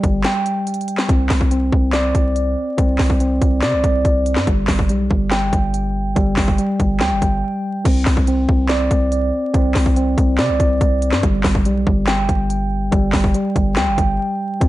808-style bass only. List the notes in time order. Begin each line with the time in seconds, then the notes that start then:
0.04 G1
1.09 C2
1.30 C2
1.72 C2
2.15 C2
2.78 C2
2.99 C2
3.42 C2
3.63 C3
3.73 C2
3.84 C2
4.05 C2
4.37 G2
4.47 G1
4.68 G1
4.89 B1
5.11 G1
5.53 G1
6.16 G1
6.37 G1
6.80 G1
7.01 D2
7.11 G1
7.22 G1
7.85 C2
8.06 C2
8.49 C2
8.91 C2
9.54 C2
9.75 C2
10.18 C2
10.39 C3
10.49 C2
10.60 C2
10.81 C2
11.13 G2
11.23 G1
11.44 G1
11.65 B1
11.87 G1
12.29 G1
12.92 G1
13.13 G1
13.56 G1
13.77 D2
13.87 G1
13.98 G1
14.61 C2